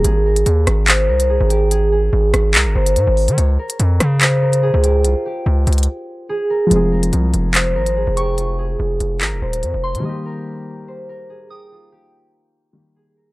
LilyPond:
<<
  \new Staff \with { instrumentName = "Synth bell" } { \time 4/4 \key f \minor \tempo 4 = 144 r1 | r1 | r1 | r1 |
r2. r8 des'''8 | r2. r8 c'''8 | r2. r8 ees'''8 | r1 | }
  \new Staff \with { instrumentName = "Harp" } { \time 4/4 \key f \minor aes'8 bes'4. c''8 bes'8 aes'8 g'8 | aes'8 aes'4. bes'8 c''4. | des''8 bes'4. c''8 bes'8 aes'8 g'8 | f'8 g'2~ g'8 aes'8 bes'8 |
f'8 bes'4. c''8 bes'8 aes'8 g'8 | f'8 aes'4. bes'8 c''4. | ees''8 bes'4. c''8 bes'8 aes'8 g'8 | f'8 g'2~ g'8 aes'8 bes'8 | }
  \new Staff \with { instrumentName = "Grand piano" } { \time 4/4 \key f \minor r1 | r1 | r1 | r1 |
<f aes c' aes'>1~ | <f aes c' aes'>1 | <ees g bes g'>1~ | <ees g bes g'>2~ <ees g bes g'>8 <ees g bes g'>4. | }
  \new Staff \with { instrumentName = "808-style bass" } { \clef bass \time 4/4 \key f \minor aes,,4 ees,8 aes,,4 c,8. aes,,8.~ | aes,,4 aes,,8 aes,,8 c,16 aes,,16 g,,8 aes,16 aes,,8 ees16 | des,8 r8 f,8 des4.~ des16 des,8. | c,16 r8. des,8 des,8 r2 |
f,,4 c,8 f,,4 aes,,8. f,,8.~ | f,,4 f,,8 f,,8 aes,,16 f,,16 ees,,8 f,16 f,,8 c16 | r1 | r1 | }
  \new DrumStaff \with { instrumentName = "Drums" } \drummode { \time 4/4 hh8. hh16 hh8 <hh ss>8 <hc hh>8. hh16 r8 hh8 | hh4 r8 <hh ss>8 <hc hh>8. hh16 hh8 hho16 hh16 | hh8. hh16 hh8 <hh ss>8 <hc hh>8. hh16 r8 hh8 | hh4 r8 hh32 hh32 hh32 hh32 r4 r4 |
hh8. hh16 hh8 hh8 <hc hh>8. hh16 r8 hh8 | hh4 r8 hh8 <hc hh>8. hh16 hh8. hh16 | r4 r4 r4 r4 | r4 r4 r4 r4 | }
>>